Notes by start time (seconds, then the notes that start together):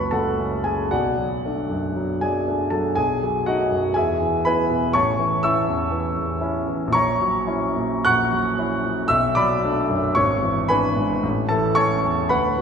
Already playing: F#1 C#2 F#3 A3 C#4 B4 C#5 A5 B5 C#6
0.11 C#2 A4 F#5 A5
0.39 A3 C#4
0.64 F#3 G#4 G#5
0.91 B1 F#4 D5 F#5
1.18 F#3
1.44 A3 D4
1.70 F#2
1.96 F#3
2.21 F#2 G#4 D5 G#5
2.48 A3 D4
2.70 F#3 A4 A5
2.95 B1 G#4 G#5
3.23 F#3
3.46 A3 D#4 F#4 D#5 F#5
3.71 F#2
3.94 E2 G#4 E5 G#5
4.22 E3
4.45 B3 E4 B4 G#5 B5
4.70 B2
4.93 A1 C#5 A5 C#6
5.19 E3
5.43 C#4 E4 E5 C#6 E6
5.68 E2
5.92 E3
6.17 E2
6.41 C#4 E4
6.68 E3
6.87 A#1
6.93 C#5 A#5 C#6
7.21 F#3
7.47 C#4 E4
7.76 A#2
8.05 A#1 F#5 C#6 F#6
8.33 F#3
8.58 C#4 E4
8.84 A#2
9.08 B1 E5 E6
9.35 F#3 D5 B5 D6
9.63 A3 D4
9.89 F#2
10.15 G#1 C#5 C#6
10.43 E3
10.68 B3 D4 B4 G#5 B5
10.97 G#2
11.23 A1
11.49 E3 A4 A5
11.75 A3 C#4 C#5 A5 C#6
12.03 E2
12.29 D2 B4 F#5 B5
12.57 B3 F#4